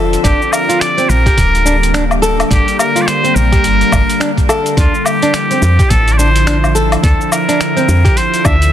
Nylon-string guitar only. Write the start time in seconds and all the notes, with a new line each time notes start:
Already playing: A4
0.24 D4
0.69 F4
0.97 C4
1.26 G4
1.66 D4
1.94 D4
2.22 A4
2.50 D4
2.96 F4
3.24 C4
3.52 G4
3.92 D4
4.20 D4
4.49 A4
4.77 D4
5.23 D4
5.51 C4
5.79 G4
6.19 D4
6.47 D4
6.75 A4
7.03 D4
7.49 D4
7.77 C4
8.05 G4
8.45 D4